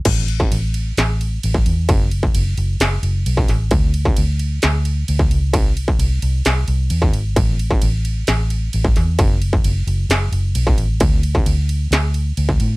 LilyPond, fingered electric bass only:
\new Staff \with { instrumentName = "Fingered electric bass" } { \clef bass \time 4/4 \key a \mixolydian \tempo 4 = 132 a,,4 a,,4 a,,4 a,,8 e,8 | fis,,4 fis,,8 fis,,8 fis,,8 fis,,8 b,,8 a,,8 | d,4 d,4 d,4 d,8 cis,8 | c,4 c,8 c,8 c,8 c,8 e,8 gis,,8 |
a,,4 a,,4 a,,4 a,,8 e,8 | fis,,4 fis,,8 fis,,8 fis,,8 fis,,8 b,,8 a,,8 | d,4 d,4 d,4 d,8 a,8 | }